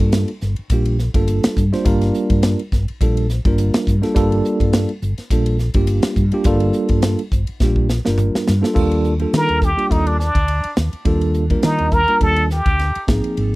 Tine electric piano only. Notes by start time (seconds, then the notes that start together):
Already playing: G3 A#3 D4 F4 A4
0.43 F4 A4
0.72 G3 A#3 D4 F4 G4
1.01 F4 A4
1.15 G3 A#3 D4 F4 A4
1.72 G3 A#3 D4 F4 C5
1.85 G3 A#3 D4 F4 A#4
2.73 F4 A#4
3.01 G3 A#3 D4 F4 A4
3.31 F4 C5
3.45 G3 A#3 D4 F4 A#4
4.02 G3 A#3 D4 F4 A4
4.15 G3 A#3 D4 F4 A4
5.02 F4 A4
5.31 G3 A#3 D4 F4 A4
5.60 F4
5.75 G3 A#3 D4 F4 G4
6.33 G3 A#3 D4 F4 G4
6.45 G3 A#3 D4 F4 A4
7.32 F4 C5
7.62 G3 A#3 D4 F4 G4
7.89 F4
8.05 G3 A#3 D4 F4 A#4
8.62 G3 A#3 D4 F4 A4
8.74 G3 A#3 D4 F4 A4
9.20 G3 A#3 D4 F4 A4
9.77 G3 A#3 D4 F4 G4
9.90 G3 A#3 D4 F4 A4
11.05 G3 A#3 D4 F4 A4
11.50 G3 A#3 D4 F4 A#4
12.08 G3 A#3 D4 F4 A#4
12.21 G3 A#3 D4 F4 A4
12.53 A4
13.07 F3 A#3 C4 D#4 G#4